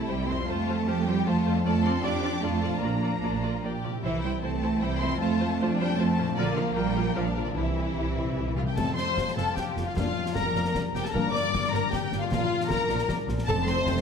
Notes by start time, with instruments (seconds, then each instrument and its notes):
Already playing: harp C3 C4 E4 G4, trombone section G3 C4, violin section E4
0.08 double bass section C2, cello section G3, viola section G4 C5, violin section G5
0.28 harp F2, cello section C4, viola section G4 C5, violin section C6
0.35 harp C4
0.40 harp F4
0.44 double bass section F2, cello section A3, violin section F4, harp A4
0.48 trombone section F3, viola section F4 C5, violin section A5
0.69 viola section F4 C5
0.87 double bass section F2, viola section F4 C5, violin section G4
1.06 cello section G3, viola section F4 C5, violin section G5
1.26 double bass section F2, cello section A3, viola section F4 C5, violin section F4 A5
1.46 harp F2, viola section F4 C5
1.52 harp D4
1.57 harp F4
1.61 harp A4
1.65 double bass section F2, cello section A3, trombone section D4, viola section F4 D5, violin section A4 A5
1.84 cello section C4, viola section F4 D5, violin section C6
2.03 double bass section F2, cello section D4, viola section F4 D5, violin section G4 D6
2.23 viola section F4 D5
2.42 double bass section F2, cello section A3, viola section F4 D5, violin section F4 A5
2.63 harp A#2, viola section F4 D5
2.70 harp D4
2.75 harp F4
2.79 cello section A#3, violin section D4 A#5, viola section F4 D5, harp A#4
2.83 double bass section A#1, trombone section F3
3.03 viola section F4 D5
3.22 double bass section A#1, violin section D4, viola section F4 D5
3.42 violin section F4, viola section F4 D5
3.63 double bass section A#1, viola section F4 D5, violin section G4
3.84 harp C3, viola section F4 D5
3.90 harp C4
3.95 harp E4
3.99 harp G4
4.03 double bass section C2, timpani C3, cello section E3, trombone section E3 C4, violin section E4 E5, viola section E4 C5
4.22 cello section G3, viola section E4 C5, violin section G5
4.42 double bass section C2, cello section A3, violin section C4 A5, viola section E4 C5
4.62 viola section E4 C5
4.81 double bass section C2, cello section G3, violin section E4 G5, viola section E4 C5
5.00 harp F2, cello section C4, viola section E4 C5, violin section C6
5.08 harp C4
5.12 harp F4
5.17 viola section F4 C5, harp A4, violin section A5
5.21 double bass section F2, trombone section F3, cello section A3, violin section F4
5.41 viola section F4 C5
5.60 double bass section F2, violin section D4, viola section F4 C5
5.79 cello section G3, viola section F4 C5, violin section G5
5.98 double bass section F2, cello section A3, violin section C4 A5, viola section F4 C5
6.18 harp A#2, viola section F4 C5
6.24 harp D4
6.29 harp F4
6.34 double bass section A#1, cello section D3, trombone section F3, violin section A#3 D5, harp A#4
6.38 trombone section A#3, viola section F4 A#4
6.56 cello section F3, viola section F4 A#4, violin section F5
6.75 double bass section A#1, cello section G3, viola section F4 A#4, violin section G5
6.95 viola section F4 A#4
7.14 double bass section A#1, trombone section F3 A#3, cello section F3, violin section D4 F5, viola section F4 A#4
7.36 harp C3, viola section F4 A#4
7.42 harp C4, violin section D5
7.46 cello section D3, harp E4
7.51 timpani C3, harp G4, violin section E5
7.55 double bass section C2, cello section E3, trombone section G3 C4, viola section E4 G4, violin section E4
7.62 timpani C3
7.70 timpani C3
7.78 timpani C3, viola section E4 G4
7.85 timpani C3
7.94 double bass section C2, timpani C3
7.98 timpani C3, viola section E4 G4
8.09 timpani C3
8.17 timpani C3, viola section E4 G4
8.24 timpani C3
8.32 timpani C3
8.36 double bass section C2, timpani C3, viola section E4 G4
8.48 timpani C3
8.56 timpani C3, viola section E4 F4 G4, violin section F4 F5
8.63 timpani C3, violin section G5
8.67 violin section G4, viola section G4
8.76 double bass section F1, harp F2, cello section F2, timpani F2, french horn section A3 C4, violin section A4 A5, viola section A4, concert bass drum, crash
8.88 harp C3
8.96 harp C4, viola section C5, violin section C5 C6, snare
9.08 harp F4
9.17 double bass section F1, cello section F2, harp A4, concert bass drum, snare
9.28 harp C5, snare
9.36 double bass section F1, cello section F2, viola section A4, violin section A4 A5, harp F5, snare
9.48 harp A5
9.56 violin section G4 G5, viola section G4, harp F5, concert bass drum, snare
9.67 harp C5
9.77 double bass section F1, cello section F2, harp F4, snare
9.86 harp C4, violin section F4 F5, viola section F4
9.96 double bass section F1, cello section F2, harp F2, french horn section A#3 D4, violin section F4 F5, viola section F4, concert bass drum, snare
10.07 harp F3
10.17 harp A#3
10.26 harp D4, snare
10.35 double bass section F1, cello section F2, viola section A#4, violin section A#4 A#5, harp A#4, concert bass drum, snare
10.47 harp D4
10.55 double bass section F1, cello section F2, harp D5, snare
10.65 harp A#5, snare
10.75 harp D5, concert bass drum, snare
10.86 harp A#4
10.94 double bass section F1, cello section F2, harp D4, viola section G4, violin section G4 G5, snare
11.04 harp A#3, viola section A4, violin section A4 A5, snare
11.13 double bass section G1, cello section G2, harp G2, french horn section A#3 D4, violin section A#4 A#5, viola section A#4, concert bass drum
11.25 harp D3
11.33 harp A#3, viola section D5, violin section D5 D6, snare
11.43 harp D4
11.53 double bass section G1, cello section G2, harp A#4, concert bass drum, snare
11.63 harp D4, snare
11.71 double bass section G1, cello section G2, viola section A#4, violin section A#4 A#5, harp D5, snare
11.91 viola section G4, violin section G4 G5, harp D5, concert bass drum, snare
12.02 harp A#4
12.11 double bass section G1, cello section G2, harp D4, snare
12.20 harp A#3, viola section F4, violin section F4 F5
12.30 double bass section A#1, cello section A#2, harp A#2, french horn section A#3 D4, viola section F4, violin section F4 F5, concert bass drum, snare
12.41 harp F3
12.51 harp A#3
12.61 harp D4, snare
12.69 double bass section A#1, cello section A#2, viola section A#4, harp A#4, violin section A#4 A#5, concert bass drum, snare
12.81 harp D4
12.88 double bass section A#1, cello section A#2, harp D5, snare
12.99 harp A#5, snare
13.09 harp D5, concert bass drum, snare
13.19 harp A#4
13.28 double bass section A#1, cello section A#2, harp D4, snare
13.39 harp A#3, snare
13.46 double bass section F1, cello section F2, harp F2, timpani F2, french horn section A3 C4, viola section A4, violin section A4 A5, concert bass drum, crash
13.58 harp C3
13.65 harp A3, viola section C5, violin section C5 C6, snare
13.77 harp C4
13.86 double bass section F1, cello section F2, harp C5, concert bass drum, snare
13.96 harp A4, snare